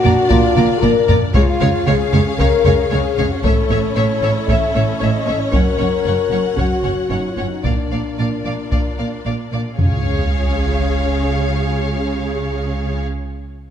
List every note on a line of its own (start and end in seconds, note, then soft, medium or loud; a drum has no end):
0.00 1.34 D4 medium
0.00 0.28 F#4 loud
0.00 1.34 A#4 medium
0.00 1.34 D5 medium
0.04 0.12 A#1 medium
0.04 0.13 A#2 medium
0.04 0.12 A#3 medium
0.04 0.12 D5 medium
0.04 0.13 A#5 medium
0.04 taiko low soft
0.29 0.38 A#1 medium
0.29 0.39 A#2 medium
0.29 0.38 A#3 medium
0.29 0.82 F4 loud
0.29 0.38 D5 medium
0.29 0.38 A#5 medium
0.29 taiko medium
0.56 0.64 A#1 medium
0.56 0.65 A#2 medium
0.56 0.65 A#3 medium
0.56 0.65 D5 medium
0.56 0.64 A#5 medium
0.56 taiko mid medium
0.80 0.91 A#1 medium
0.80 0.91 A#3 medium
0.80 1.18 A#4 loud
0.80 0.91 D5 medium
0.80 0.90 A#5 medium
0.80 taiko low-mid medium
0.84 0.92 A#2 medium
1.08 1.17 A#1 medium
1.08 1.17 A#2 medium
1.08 1.18 A#3 medium
1.08 1.17 D5 medium
1.08 1.16 A#5 medium
1.08 taiko low medium
1.33 1.43 C#2 medium
1.33 1.43 C#3 medium
1.33 1.44 G#3 medium
1.33 7.64 C#4 medium
1.33 1.85 F4 loud
1.33 3.43 G#4 medium
1.33 1.43 C#5 medium
1.33 7.64 C#5 medium
1.33 1.41 F5 medium
1.33 3.43 F5 medium
1.33 taiko medium
1.60 1.69 C#2 medium
1.60 1.69 C#3 medium
1.60 1.70 G#3 medium
1.60 1.69 C#5 medium
1.60 1.68 F5 medium
1.60 taiko low medium
1.87 1.95 C#2 medium
1.87 1.95 C#3 medium
1.87 1.96 G#3 medium
1.87 2.25 G#4 loud
1.87 1.95 C#5 medium
1.87 1.95 F5 medium
2.13 2.21 C#2 medium
2.13 2.21 C#3 medium
2.13 2.22 G#3 medium
2.13 2.21 C#5 medium
2.13 2.21 F5 medium
2.13 taiko low soft
2.26 2.39 G#4 medium
2.38 2.47 C#2 medium
2.38 2.47 C#3 medium
2.38 2.48 G#3 medium
2.38 2.89 A#4 loud
2.38 2.48 C#5 medium
2.38 2.48 F5 medium
2.38 taiko medium
2.65 2.73 C#2 medium
2.65 2.74 C#3 medium
2.65 2.74 G#3 medium
2.65 2.74 C#5 medium
2.65 2.74 F5 medium
2.65 taiko low soft
2.91 2.99 C#2 medium
2.91 3.00 C#3 medium
2.91 3.00 G#3 medium
2.91 3.30 G#4 medium
2.91 2.99 C#5 medium
2.91 3.01 F5 medium
3.17 3.25 C#2 medium
3.17 3.26 C#3 medium
3.17 3.27 G#3 medium
3.17 3.26 C#5 medium
3.17 3.26 F5 medium
3.17 taiko low soft
3.31 3.44 F#4 medium
3.44 3.52 A1 medium
3.44 3.52 A2 medium
3.44 3.52 A3 medium
3.44 5.53 E4 medium
3.44 3.95 A4 medium
3.44 5.53 A4 medium
3.44 3.52 C#5 medium
3.44 3.54 E5 medium
3.44 taiko medium
3.70 3.78 A1 medium
3.70 3.78 A2 medium
3.70 3.79 A3 medium
3.70 3.78 C#5 medium
3.70 3.79 E5 medium
3.95 4.04 A1 medium
3.95 4.04 A2 medium
3.95 4.05 A3 medium
3.95 4.34 C#5 medium
3.95 4.04 C#5 medium
3.95 4.05 E5 medium
4.22 4.30 A1 medium
4.22 4.31 A2 medium
4.22 4.30 A3 medium
4.22 4.31 C#5 medium
4.22 4.31 E5 medium
4.36 4.48 C#5 medium
4.47 4.56 A1 medium
4.47 4.57 A2 medium
4.47 4.57 A3 medium
4.47 4.58 C#5 medium
4.47 5.00 E5 medium
4.47 4.58 E5 medium
4.47 taiko medium
4.75 4.83 A1 medium
4.75 4.84 A2 medium
4.75 4.83 A3 medium
4.75 4.83 C#5 soft
4.75 4.84 E5 soft
5.00 5.09 A1 medium
5.00 5.10 A2 medium
5.00 5.09 A3 medium
5.00 5.08 C#5 soft
5.00 5.40 D#5 medium
5.00 5.11 E5 soft
5.27 5.36 A1 medium
5.27 5.37 A2 medium
5.27 5.35 A3 soft
5.27 5.35 C#5 soft
5.27 5.37 E5 soft
5.40 5.52 C#5 medium
5.52 5.61 F#1 medium
5.52 5.62 F#2 medium
5.52 5.61 C#4 medium
5.52 7.64 F#4 medium
5.52 6.55 A#4 medium
5.52 5.60 C#5 medium
5.52 7.63 F#5 medium
5.52 5.63 F#5 soft
5.52 taiko medium
5.79 5.87 F#1 medium
5.79 5.89 F#2 medium
5.79 5.87 C#4 soft
5.79 5.87 C#5 soft
5.79 5.88 F#5 soft
6.05 6.13 F#1 medium
6.05 6.15 F#2 soft
6.05 6.13 C#4 soft
6.05 6.13 C#5 soft
6.05 6.15 F#5 soft
6.31 6.39 F#1 soft
6.31 6.40 F#2 medium
6.31 6.39 C#4 soft
6.31 6.40 C#5 soft
6.31 6.41 F#5 soft
6.57 6.65 F#1 soft
6.57 6.66 F#2 soft
6.57 6.65 C#4 soft
6.57 7.10 F#4 medium
6.57 6.66 C#5 soft
6.57 6.67 F#5 soft
6.57 taiko medium
6.83 6.91 F#1 soft
6.83 6.94 F#2 soft
6.83 6.91 C#4 soft
6.83 6.92 C#5 soft
6.83 6.94 F#5 soft
7.10 7.18 F#1 soft
7.10 7.20 F#2 soft
7.10 7.18 C#4 soft
7.10 7.28 D#4 medium
7.10 7.19 C#5 soft
7.10 7.20 F#5 soft
7.29 7.47 F4 soft
7.37 7.45 F#1 soft
7.37 7.48 F#2 soft
7.37 7.46 C#4 soft
7.37 7.45 C#5 soft
7.37 7.46 F#5 soft
7.49 7.65 D#4 soft
7.63 7.72 A#1 soft
7.63 7.74 A#2 soft
7.63 7.73 A#3 soft
7.63 9.78 D4 medium
7.63 9.76 F4 soft
7.63 9.78 A#4 medium
7.63 9.78 D5 medium
7.63 7.72 D5 soft
7.63 7.73 F5 soft
7.63 taiko medium
7.68 9.27 D4 soft
7.90 7.98 A#1 soft
7.90 8.00 A#2 soft
7.90 8.00 A#3 soft
7.90 8.00 D5 soft
7.90 8.00 F5 soft
8.18 8.26 A#1 soft
8.18 8.27 A#2 soft
8.18 8.26 A#3 soft
8.18 8.27 D5 soft
8.18 8.28 F5 soft
8.44 8.52 A#1 soft
8.44 8.55 A#2 soft
8.44 8.53 A#3 soft
8.44 8.54 D5 soft
8.44 8.54 F5 soft
8.71 8.79 A#1 soft
8.71 8.81 A#2 soft
8.71 8.80 A#3 soft
8.71 8.80 D5 soft
8.71 8.80 F5 soft
8.71 taiko medium
8.98 9.06 A#1 soft
8.98 9.07 A#2 soft
8.98 9.06 A#3 soft
8.98 9.07 D5 soft
8.98 9.06 F5 soft
9.25 9.33 A#1 soft
9.25 9.34 A#2 soft
9.25 9.34 A#3 soft
9.25 9.34 D5 soft
9.25 9.33 F5 soft
9.52 9.60 A#1 soft
9.52 9.61 A#2 soft
9.52 9.60 A#3 soft
9.52 9.61 D5 soft
9.52 9.60 F5 soft
9.77 13.03 C#2 medium
9.77 13.02 C#3 soft
9.77 13.03 C#3 medium
9.77 13.01 C#4 medium
9.77 13.04 C#4 medium
9.77 13.01 F4 medium
9.77 13.02 G#4 soft
9.77 13.02 G#4 medium
9.77 13.03 C#5 soft
9.77 13.01 F5 medium
9.77 13.03 F5 soft
9.77 taiko low medium
9.77 sub drop medium